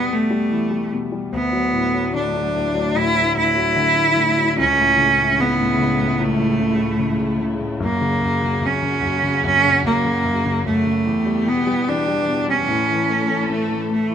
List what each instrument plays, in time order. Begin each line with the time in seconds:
Already playing: grand piano E2 B2 E3 G3, cello B3
0.10 grand piano B2, cello A3
0.30 grand piano G3
0.51 grand piano E3
0.71 grand piano G3
0.92 grand piano B2
1.12 grand piano G3
1.32 grand piano D2, string section D2 D3 F#3 E4, cello B3
1.53 grand piano F#3
1.73 grand piano A2
1.94 grand piano F#3
2.14 grand piano D3, cello D4
2.35 grand piano F#3
2.54 grand piano A2
2.74 grand piano F#3
2.95 grand piano A2, cello E4
3.15 grand piano F#3
3.35 grand piano A2, cello E4
3.56 grand piano F#3
3.75 grand piano D3
3.96 grand piano F#3
4.17 grand piano A2
4.38 grand piano F#3
4.56 string section C#2 C#3 A3, grand piano C#2, cello C#4
4.78 grand piano A2
4.98 grand piano C#3
5.17 grand piano A2
5.39 grand piano C#3, cello B3
5.58 grand piano A2
5.78 grand piano C#3
5.99 grand piano A2
6.19 grand piano C#2, cello A3
6.40 grand piano A2
6.60 grand piano C#3
6.79 grand piano A2
6.99 grand piano C#3
7.19 grand piano A2
7.40 grand piano C#3
7.61 grand piano A2
7.80 grand piano F#2, string section F#2 A#2 F#4, cello A#3
8.01 grand piano C#3
8.21 grand piano F#2
8.42 grand piano C#3
8.62 grand piano F#2, cello C#4
8.83 grand piano C#3
9.02 grand piano F#2
9.23 grand piano C#3
9.44 grand piano F#2, cello C#4
9.64 grand piano C#3
9.84 grand piano F#2, cello A#3
10.05 grand piano C#3
10.25 grand piano F#2
10.45 grand piano C#3
10.66 grand piano F#2, cello A3
10.86 grand piano C#3
11.04 string section E2 E3 B3 G4, grand piano E2
11.26 grand piano G3
11.47 grand piano B2, cello B3
11.67 grand piano G3
11.87 grand piano E3, cello D4
12.08 grand piano G3
12.27 grand piano B2
12.48 grand piano G3, cello C#4
12.69 grand piano A2, string section A2 C#4 A4
12.90 grand piano E3
13.09 grand piano A3
13.30 grand piano E3
13.50 grand piano A3, cello A3
13.70 grand piano E3
13.90 grand piano A3, cello A3
14.10 grand piano E3